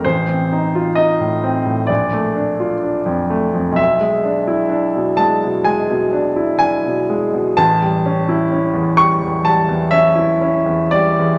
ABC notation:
X:1
M:4/4
L:1/16
Q:1/4=64
K:Aphr
V:1 name="Grand piano"
c4 _e4 d2 z6 | e6 a2 ^g4 g4 | a6 ^c'2 a2 e4 d2 |]
V:2 name="Grand piano" clef=bass
A,,, C _E F E A,, C A,, B,,, A, D F D F,, A, F,, | =B,,, ^G, D E D =B,, G, B,, G, B,, D E D B,, G, B,, | A,,, G, ^C E C E,, G, E,, G, E,, C E C E,, G, E,, |]